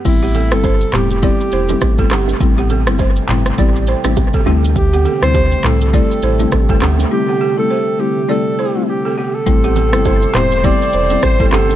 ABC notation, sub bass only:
X:1
M:4/4
L:1/16
Q:"Swing 16ths" 1/4=102
K:Am
V:1 name="Sub bass" clef=bass
A,,,3 G,,,3 E,,,3 z E,,,2 A,,,2 G,,,2 | A,,,3 G,,,3 G,,,2 A,,,3 A,,,2 z D,,2- | D,,3 D,,3 C,,3 z A,,,2 A,,,2 D,,2 | z16 |
A,,,3 G,,,3 E,,,3 z E,,,2 A,,,2 G,,,2 |]